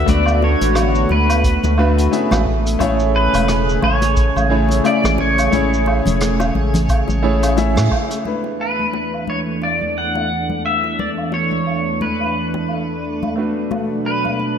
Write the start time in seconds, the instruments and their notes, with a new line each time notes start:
Already playing: analog synth pad D3 A3 B3 F#4, grand piano A3 B3 D4 F#4 B4 D5
0.06 analog synth bass D2, grand piano A3 B3 D4 F#4 B4, pedal steel guitar D5, kick, closed hi-hat, high conga, shaker
0.26 low woodblock, shaker
0.42 pedal steel guitar C#5, high bongo
0.61 analog synth bass A1, closed hi-hat, high conga, shaker
0.75 cross-stick, closed hi-hat, low woodblock, shaker
0.95 shaker
1.09 analog synth bass D2, pedal steel guitar B4, high bongo, high conga
1.29 closed hi-hat, low woodblock, shaker
1.44 kick, closed hi-hat, shaker
1.63 analog synth bass D2, high bongo, high conga, shaker
1.78 grand piano A3 B3 D4 F#4 B4, low woodblock
1.98 closed hi-hat, shaker
2.11 grand piano A3 C#4 E4 G#4 E5, closed hi-hat, shaker
2.31 analog synth bass A1, cross-stick, high bongo, high conga, low woodblock, shaker
2.46 analog synth pad C#3 G#4, kick
2.66 closed hi-hat, shaker
2.79 analog synth bass A1, grand piano A3 C#4 E4 G#4 C#5, kick, closed hi-hat, high bongo, high conga, low woodblock, shaker
2.99 shaker
3.16 pedal steel guitar B4
3.33 analog synth bass E1, closed hi-hat, high conga, low woodblock, shaker
3.48 cross-stick, closed hi-hat, high bongo, shaker
3.69 shaker
3.82 analog synth bass A1, pedal steel guitar C#5, high conga, low woodblock
4.02 closed hi-hat, high bongo, shaker
4.17 kick, closed hi-hat, shaker
4.36 analog synth bass A1, high conga, low woodblock, shaker
4.50 grand piano A3 C#4 E4 G#4 C#5
4.69 closed hi-hat, high bongo, shaker
4.84 grand piano C#3 A3 E4 G#4 E5, pedal steel guitar D5, closed hi-hat, low woodblock, shaker
5.04 analog synth bass A1, cross-stick, high conga, shaker
5.18 pedal steel guitar C#5, kick, high bongo
5.38 closed hi-hat, low woodblock, shaker
5.51 analog synth bass A1, grand piano A3 C#4 E4 G#4 C#5, kick, closed hi-hat, high conga, shaker
5.74 shaker
5.86 high bongo, low woodblock
6.06 analog synth bass E1, closed hi-hat, high conga, low conga, shaker
6.20 cross-stick, closed hi-hat, shaker
6.40 high bongo, low woodblock, shaker
6.55 analog synth bass A1, high conga
6.74 closed hi-hat, low conga, shaker
6.89 kick, closed hi-hat, low woodblock, shaker
7.08 analog synth bass A1, high bongo, high conga, shaker
7.23 grand piano A3 C#4 E4 G#4 C#5
7.43 closed hi-hat, low woodblock, shaker
7.57 grand piano A3 C#4 E4 G#4 E5, closed hi-hat, high bongo, shaker
7.76 analog synth bass A2, cross-stick, high conga, shaker
7.91 kick, low woodblock
8.10 closed hi-hat, shaker
8.24 analog synth pad E2 E3 A3 D4, grand piano A3 B3 D4 E4 B4, high conga, shaker
8.44 high bongo, shaker
8.59 pedal steel guitar B4, low woodblock
8.79 high conga, shaker
8.94 high bongo, shaker
9.14 low woodblock, shaker
9.27 pedal steel guitar C#5, high conga
9.48 shaker
9.62 pedal steel guitar D5, high bongo, low woodblock, shaker
9.81 high conga
9.98 pedal steel guitar F#5
10.15 high bongo, low woodblock, shaker
10.50 high conga, shaker
10.65 pedal steel guitar E5, low woodblock
10.84 high bongo
10.99 pedal steel guitar D5, high conga
11.18 low woodblock, shaker
11.32 pedal steel guitar C#5, high bongo
11.51 high conga, shaker
11.66 low woodblock, shaker
12.01 pedal steel guitar B4, high bongo, high conga
12.20 low woodblock, shaker
12.54 high bongo, high conga, shaker
12.68 low woodblock
13.04 shaker
13.23 high bongo, high conga, low woodblock, shaker
13.36 analog synth pad B2 F#3, grand piano A3 B3 D4 F#4 B4
13.57 shaker
13.71 high bongo, high conga, low woodblock, shaker
13.91 shaker
14.06 pedal steel guitar B4
14.24 high conga, low woodblock, shaker
14.40 high bongo